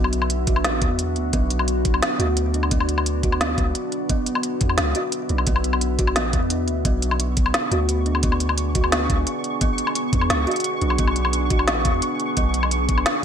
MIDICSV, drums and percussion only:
0, 0, Header, 1, 2, 480
1, 0, Start_track
1, 0, Tempo, 344828
1, 1860, Time_signature, 4, 2, 24, 8
1, 18437, End_track
2, 0, Start_track
2, 0, Title_t, "Drums"
2, 61, Note_on_c, 9, 77, 60
2, 178, Note_on_c, 9, 42, 64
2, 200, Note_off_c, 9, 77, 0
2, 302, Note_on_c, 9, 77, 57
2, 317, Note_off_c, 9, 42, 0
2, 416, Note_on_c, 9, 42, 78
2, 441, Note_off_c, 9, 77, 0
2, 555, Note_off_c, 9, 42, 0
2, 656, Note_on_c, 9, 42, 65
2, 660, Note_on_c, 9, 36, 107
2, 782, Note_on_c, 9, 77, 61
2, 795, Note_off_c, 9, 42, 0
2, 799, Note_off_c, 9, 36, 0
2, 898, Note_on_c, 9, 38, 127
2, 898, Note_on_c, 9, 42, 79
2, 921, Note_off_c, 9, 77, 0
2, 1037, Note_off_c, 9, 38, 0
2, 1037, Note_off_c, 9, 42, 0
2, 1136, Note_on_c, 9, 42, 59
2, 1138, Note_on_c, 9, 36, 113
2, 1275, Note_off_c, 9, 42, 0
2, 1277, Note_off_c, 9, 36, 0
2, 1375, Note_on_c, 9, 42, 78
2, 1514, Note_off_c, 9, 42, 0
2, 1614, Note_on_c, 9, 42, 37
2, 1753, Note_off_c, 9, 42, 0
2, 1853, Note_on_c, 9, 42, 78
2, 1858, Note_on_c, 9, 36, 123
2, 1992, Note_off_c, 9, 42, 0
2, 1997, Note_off_c, 9, 36, 0
2, 2095, Note_on_c, 9, 42, 60
2, 2218, Note_on_c, 9, 77, 60
2, 2234, Note_off_c, 9, 42, 0
2, 2336, Note_on_c, 9, 42, 72
2, 2358, Note_off_c, 9, 77, 0
2, 2475, Note_off_c, 9, 42, 0
2, 2575, Note_on_c, 9, 42, 65
2, 2578, Note_on_c, 9, 36, 103
2, 2700, Note_on_c, 9, 77, 59
2, 2714, Note_off_c, 9, 42, 0
2, 2717, Note_off_c, 9, 36, 0
2, 2819, Note_on_c, 9, 38, 119
2, 2819, Note_on_c, 9, 42, 76
2, 2839, Note_off_c, 9, 77, 0
2, 2958, Note_off_c, 9, 38, 0
2, 2958, Note_off_c, 9, 42, 0
2, 3058, Note_on_c, 9, 42, 59
2, 3198, Note_off_c, 9, 42, 0
2, 3296, Note_on_c, 9, 42, 75
2, 3435, Note_off_c, 9, 42, 0
2, 3537, Note_on_c, 9, 42, 37
2, 3661, Note_on_c, 9, 77, 51
2, 3677, Note_off_c, 9, 42, 0
2, 3776, Note_on_c, 9, 42, 75
2, 3779, Note_on_c, 9, 36, 118
2, 3800, Note_off_c, 9, 77, 0
2, 3904, Note_on_c, 9, 77, 60
2, 3915, Note_off_c, 9, 42, 0
2, 3918, Note_off_c, 9, 36, 0
2, 4019, Note_on_c, 9, 42, 61
2, 4043, Note_off_c, 9, 77, 0
2, 4145, Note_on_c, 9, 77, 61
2, 4158, Note_off_c, 9, 42, 0
2, 4262, Note_on_c, 9, 42, 75
2, 4284, Note_off_c, 9, 77, 0
2, 4402, Note_off_c, 9, 42, 0
2, 4501, Note_on_c, 9, 36, 101
2, 4502, Note_on_c, 9, 42, 64
2, 4628, Note_on_c, 9, 77, 62
2, 4640, Note_off_c, 9, 36, 0
2, 4641, Note_off_c, 9, 42, 0
2, 4744, Note_on_c, 9, 38, 122
2, 4744, Note_on_c, 9, 42, 74
2, 4767, Note_off_c, 9, 77, 0
2, 4883, Note_off_c, 9, 38, 0
2, 4883, Note_off_c, 9, 42, 0
2, 4981, Note_on_c, 9, 36, 107
2, 4982, Note_on_c, 9, 42, 58
2, 5120, Note_off_c, 9, 36, 0
2, 5121, Note_off_c, 9, 42, 0
2, 5221, Note_on_c, 9, 42, 74
2, 5360, Note_off_c, 9, 42, 0
2, 5458, Note_on_c, 9, 42, 36
2, 5597, Note_off_c, 9, 42, 0
2, 5700, Note_on_c, 9, 42, 81
2, 5702, Note_on_c, 9, 36, 115
2, 5839, Note_off_c, 9, 42, 0
2, 5841, Note_off_c, 9, 36, 0
2, 5936, Note_on_c, 9, 42, 65
2, 6060, Note_on_c, 9, 77, 66
2, 6075, Note_off_c, 9, 42, 0
2, 6171, Note_on_c, 9, 42, 79
2, 6199, Note_off_c, 9, 77, 0
2, 6311, Note_off_c, 9, 42, 0
2, 6413, Note_on_c, 9, 42, 65
2, 6421, Note_on_c, 9, 36, 97
2, 6535, Note_on_c, 9, 77, 62
2, 6553, Note_off_c, 9, 42, 0
2, 6560, Note_off_c, 9, 36, 0
2, 6649, Note_on_c, 9, 38, 113
2, 6649, Note_on_c, 9, 42, 77
2, 6674, Note_off_c, 9, 77, 0
2, 6788, Note_off_c, 9, 38, 0
2, 6788, Note_off_c, 9, 42, 0
2, 6888, Note_on_c, 9, 42, 61
2, 7028, Note_off_c, 9, 42, 0
2, 7129, Note_on_c, 9, 42, 75
2, 7269, Note_off_c, 9, 42, 0
2, 7368, Note_on_c, 9, 42, 36
2, 7494, Note_on_c, 9, 77, 53
2, 7507, Note_off_c, 9, 42, 0
2, 7609, Note_on_c, 9, 42, 82
2, 7618, Note_on_c, 9, 36, 115
2, 7633, Note_off_c, 9, 77, 0
2, 7736, Note_on_c, 9, 77, 63
2, 7748, Note_off_c, 9, 42, 0
2, 7757, Note_off_c, 9, 36, 0
2, 7854, Note_on_c, 9, 42, 66
2, 7876, Note_off_c, 9, 77, 0
2, 7977, Note_on_c, 9, 77, 63
2, 7993, Note_off_c, 9, 42, 0
2, 8092, Note_on_c, 9, 42, 78
2, 8116, Note_off_c, 9, 77, 0
2, 8232, Note_off_c, 9, 42, 0
2, 8334, Note_on_c, 9, 42, 67
2, 8337, Note_on_c, 9, 36, 102
2, 8455, Note_on_c, 9, 77, 65
2, 8473, Note_off_c, 9, 42, 0
2, 8476, Note_off_c, 9, 36, 0
2, 8572, Note_on_c, 9, 38, 114
2, 8572, Note_on_c, 9, 42, 84
2, 8595, Note_off_c, 9, 77, 0
2, 8711, Note_off_c, 9, 38, 0
2, 8711, Note_off_c, 9, 42, 0
2, 8813, Note_on_c, 9, 42, 63
2, 8816, Note_on_c, 9, 36, 106
2, 8952, Note_off_c, 9, 42, 0
2, 8955, Note_off_c, 9, 36, 0
2, 9051, Note_on_c, 9, 42, 77
2, 9190, Note_off_c, 9, 42, 0
2, 9293, Note_on_c, 9, 42, 39
2, 9433, Note_off_c, 9, 42, 0
2, 9535, Note_on_c, 9, 42, 84
2, 9537, Note_on_c, 9, 36, 124
2, 9675, Note_off_c, 9, 42, 0
2, 9676, Note_off_c, 9, 36, 0
2, 9777, Note_on_c, 9, 42, 68
2, 9902, Note_on_c, 9, 77, 63
2, 9916, Note_off_c, 9, 42, 0
2, 10017, Note_on_c, 9, 42, 83
2, 10041, Note_off_c, 9, 77, 0
2, 10156, Note_off_c, 9, 42, 0
2, 10256, Note_on_c, 9, 42, 70
2, 10260, Note_on_c, 9, 36, 102
2, 10382, Note_on_c, 9, 77, 67
2, 10395, Note_off_c, 9, 42, 0
2, 10399, Note_off_c, 9, 36, 0
2, 10497, Note_on_c, 9, 38, 117
2, 10497, Note_on_c, 9, 42, 83
2, 10521, Note_off_c, 9, 77, 0
2, 10636, Note_off_c, 9, 38, 0
2, 10636, Note_off_c, 9, 42, 0
2, 10740, Note_on_c, 9, 42, 62
2, 10879, Note_off_c, 9, 42, 0
2, 10980, Note_on_c, 9, 42, 80
2, 11119, Note_off_c, 9, 42, 0
2, 11219, Note_on_c, 9, 42, 39
2, 11342, Note_on_c, 9, 77, 54
2, 11358, Note_off_c, 9, 42, 0
2, 11454, Note_on_c, 9, 42, 84
2, 11462, Note_on_c, 9, 36, 127
2, 11482, Note_off_c, 9, 77, 0
2, 11582, Note_on_c, 9, 77, 58
2, 11594, Note_off_c, 9, 42, 0
2, 11601, Note_off_c, 9, 36, 0
2, 11697, Note_on_c, 9, 42, 70
2, 11721, Note_off_c, 9, 77, 0
2, 11821, Note_on_c, 9, 77, 62
2, 11836, Note_off_c, 9, 42, 0
2, 11938, Note_on_c, 9, 42, 80
2, 11960, Note_off_c, 9, 77, 0
2, 12077, Note_off_c, 9, 42, 0
2, 12180, Note_on_c, 9, 42, 74
2, 12184, Note_on_c, 9, 36, 107
2, 12302, Note_on_c, 9, 77, 63
2, 12319, Note_off_c, 9, 42, 0
2, 12323, Note_off_c, 9, 36, 0
2, 12421, Note_on_c, 9, 38, 124
2, 12421, Note_on_c, 9, 42, 82
2, 12441, Note_off_c, 9, 77, 0
2, 12560, Note_off_c, 9, 38, 0
2, 12560, Note_off_c, 9, 42, 0
2, 12663, Note_on_c, 9, 42, 66
2, 12664, Note_on_c, 9, 36, 113
2, 12802, Note_off_c, 9, 42, 0
2, 12803, Note_off_c, 9, 36, 0
2, 12900, Note_on_c, 9, 42, 85
2, 13040, Note_off_c, 9, 42, 0
2, 13142, Note_on_c, 9, 42, 40
2, 13281, Note_off_c, 9, 42, 0
2, 13379, Note_on_c, 9, 42, 84
2, 13381, Note_on_c, 9, 36, 127
2, 13518, Note_off_c, 9, 42, 0
2, 13521, Note_off_c, 9, 36, 0
2, 13616, Note_on_c, 9, 42, 69
2, 13740, Note_on_c, 9, 77, 58
2, 13755, Note_off_c, 9, 42, 0
2, 13856, Note_on_c, 9, 42, 81
2, 13879, Note_off_c, 9, 77, 0
2, 13995, Note_off_c, 9, 42, 0
2, 14099, Note_on_c, 9, 36, 112
2, 14099, Note_on_c, 9, 42, 70
2, 14219, Note_on_c, 9, 77, 59
2, 14238, Note_off_c, 9, 36, 0
2, 14238, Note_off_c, 9, 42, 0
2, 14338, Note_on_c, 9, 38, 127
2, 14338, Note_on_c, 9, 42, 82
2, 14358, Note_off_c, 9, 77, 0
2, 14477, Note_off_c, 9, 38, 0
2, 14477, Note_off_c, 9, 42, 0
2, 14575, Note_on_c, 9, 42, 28
2, 14636, Note_off_c, 9, 42, 0
2, 14636, Note_on_c, 9, 42, 36
2, 14701, Note_off_c, 9, 42, 0
2, 14701, Note_on_c, 9, 42, 43
2, 14756, Note_off_c, 9, 42, 0
2, 14756, Note_on_c, 9, 42, 50
2, 14815, Note_off_c, 9, 42, 0
2, 14815, Note_on_c, 9, 42, 82
2, 14954, Note_off_c, 9, 42, 0
2, 15054, Note_on_c, 9, 42, 39
2, 15176, Note_on_c, 9, 77, 50
2, 15194, Note_off_c, 9, 42, 0
2, 15290, Note_on_c, 9, 42, 82
2, 15297, Note_on_c, 9, 36, 127
2, 15316, Note_off_c, 9, 77, 0
2, 15417, Note_on_c, 9, 77, 57
2, 15430, Note_off_c, 9, 42, 0
2, 15436, Note_off_c, 9, 36, 0
2, 15533, Note_on_c, 9, 42, 64
2, 15556, Note_off_c, 9, 77, 0
2, 15657, Note_on_c, 9, 77, 56
2, 15672, Note_off_c, 9, 42, 0
2, 15773, Note_on_c, 9, 42, 80
2, 15796, Note_off_c, 9, 77, 0
2, 15912, Note_off_c, 9, 42, 0
2, 16013, Note_on_c, 9, 42, 68
2, 16018, Note_on_c, 9, 36, 107
2, 16136, Note_on_c, 9, 77, 59
2, 16153, Note_off_c, 9, 42, 0
2, 16157, Note_off_c, 9, 36, 0
2, 16252, Note_on_c, 9, 38, 127
2, 16252, Note_on_c, 9, 42, 77
2, 16276, Note_off_c, 9, 77, 0
2, 16391, Note_off_c, 9, 38, 0
2, 16391, Note_off_c, 9, 42, 0
2, 16494, Note_on_c, 9, 42, 62
2, 16498, Note_on_c, 9, 36, 116
2, 16633, Note_off_c, 9, 42, 0
2, 16638, Note_off_c, 9, 36, 0
2, 16733, Note_on_c, 9, 42, 74
2, 16873, Note_off_c, 9, 42, 0
2, 16977, Note_on_c, 9, 42, 39
2, 17116, Note_off_c, 9, 42, 0
2, 17216, Note_on_c, 9, 42, 74
2, 17221, Note_on_c, 9, 36, 125
2, 17355, Note_off_c, 9, 42, 0
2, 17360, Note_off_c, 9, 36, 0
2, 17456, Note_on_c, 9, 42, 61
2, 17580, Note_on_c, 9, 77, 60
2, 17595, Note_off_c, 9, 42, 0
2, 17697, Note_on_c, 9, 42, 77
2, 17720, Note_off_c, 9, 77, 0
2, 17837, Note_off_c, 9, 42, 0
2, 17938, Note_on_c, 9, 42, 64
2, 17941, Note_on_c, 9, 36, 103
2, 18063, Note_on_c, 9, 77, 59
2, 18077, Note_off_c, 9, 42, 0
2, 18080, Note_off_c, 9, 36, 0
2, 18177, Note_on_c, 9, 38, 124
2, 18177, Note_on_c, 9, 42, 80
2, 18202, Note_off_c, 9, 77, 0
2, 18316, Note_off_c, 9, 38, 0
2, 18316, Note_off_c, 9, 42, 0
2, 18437, End_track
0, 0, End_of_file